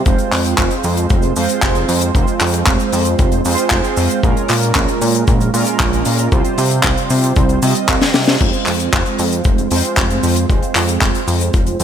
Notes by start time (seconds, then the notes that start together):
0.06 F1 G#3 C4 F4 C5, kick, closed hi-hat, cabasa
0.18 closed hi-hat, cabasa
0.32 F2, clap, open hi-hat, cabasa
0.44 closed hi-hat, cabasa
0.57 F1, kick, clap, closed hi-hat, cabasa
0.70 closed hi-hat, cabasa
0.84 F2, open hi-hat, cabasa
0.97 closed hi-hat, cabasa
1.10 F1, kick, closed hi-hat, cabasa
1.22 closed hi-hat, cabasa
1.36 F2 G#3 C4 F4 C5, open hi-hat, cabasa
1.49 closed hi-hat, cabasa
1.62 F1, kick, clap, closed hi-hat, cabasa
1.75 closed hi-hat, cabasa
1.89 F2, open hi-hat, cabasa
2.01 closed hi-hat, cabasa
2.14 F1 G#3 C4 F4 C5, kick, closed hi-hat, cabasa
2.27 closed hi-hat, cabasa
2.40 F2, clap, open hi-hat, cabasa
2.54 closed hi-hat, cabasa
2.66 F1, kick, clap, closed hi-hat, cabasa
2.80 closed hi-hat, cabasa
2.92 F2, open hi-hat, cabasa
3.05 closed hi-hat, cabasa
3.19 F1, kick, closed hi-hat, cabasa
3.32 closed hi-hat, cabasa
3.45 F2 G#3 C4 F4 C5, open hi-hat, cabasa
3.58 closed hi-hat, cabasa
3.70 F1, kick, clap, closed hi-hat, cabasa
3.84 closed hi-hat, cabasa
3.97 F2, open hi-hat, cabasa
4.10 closed hi-hat, cabasa
4.23 A#1 A#2 G#3 C#4 F4 A#4, kick, closed hi-hat, cabasa
4.37 closed hi-hat, cabasa
4.48 A#2, clap, open hi-hat, cabasa
4.63 closed hi-hat, cabasa
4.75 A#1, kick, clap, closed hi-hat, cabasa
4.88 closed hi-hat, cabasa
5.02 A#2, open hi-hat, cabasa
5.15 closed hi-hat, cabasa
5.27 A#1, kick, closed hi-hat, cabasa
5.41 closed hi-hat, cabasa
5.54 A#2 G#3 C#4 F4 A#4, open hi-hat, cabasa
5.66 closed hi-hat, cabasa
5.80 A#1, kick, clap, closed hi-hat, cabasa
5.93 closed hi-hat, cabasa
6.05 A#2, open hi-hat, cabasa
6.19 closed hi-hat, cabasa
6.32 C2 C3 G3 C4 F4 C5, kick, closed hi-hat, cabasa
6.45 closed hi-hat, cabasa
6.58 C3, open hi-hat, cabasa
6.70 closed hi-hat, cabasa
6.83 C2, kick, clap, closed hi-hat, cabasa
6.97 closed hi-hat, cabasa
7.10 C3, open hi-hat, cabasa
7.23 closed hi-hat, cabasa
7.36 C2, kick, closed hi-hat, cabasa
7.49 closed hi-hat, cabasa
7.62 C3 G3 C4 F4 D#5, open hi-hat, cabasa
7.75 closed hi-hat, cabasa
7.88 C2, kick, clap, closed hi-hat, cabasa
8.02 snare, closed hi-hat, cabasa
8.14 C3, snare, open hi-hat, cabasa
8.27 snare, closed hi-hat, cabasa
8.40 F1 G#3 C4 F4 C5, kick, closed hi-hat, crash, cabasa
8.53 closed hi-hat, cabasa
8.66 F2, clap, open hi-hat, cabasa
8.80 closed hi-hat, cabasa
8.93 F1, kick, clap, closed hi-hat, cabasa
9.06 closed hi-hat, cabasa
9.19 F2, open hi-hat, cabasa
9.32 closed hi-hat, cabasa
9.44 F1, kick, closed hi-hat, cabasa
9.58 closed hi-hat, cabasa
9.71 F2 G#3 C4 F4 C5, open hi-hat, cabasa
9.84 closed hi-hat, cabasa
9.96 F1, kick, clap, closed hi-hat, cabasa
10.10 closed hi-hat, cabasa
10.23 F2, open hi-hat, cabasa
10.36 closed hi-hat, cabasa
10.49 F1 G#3 C4 F4 C5, kick, closed hi-hat, cabasa
10.63 closed hi-hat, cabasa
10.75 F2, clap, open hi-hat, cabasa
10.88 closed hi-hat, cabasa
11.01 F1, kick, clap, closed hi-hat, cabasa
11.15 closed hi-hat, cabasa
11.28 F2, open hi-hat, cabasa
11.41 closed hi-hat, cabasa
11.54 F1, kick, closed hi-hat, cabasa
11.66 closed hi-hat, cabasa
11.80 F2 G#3 C4 F4 C5, open hi-hat, cabasa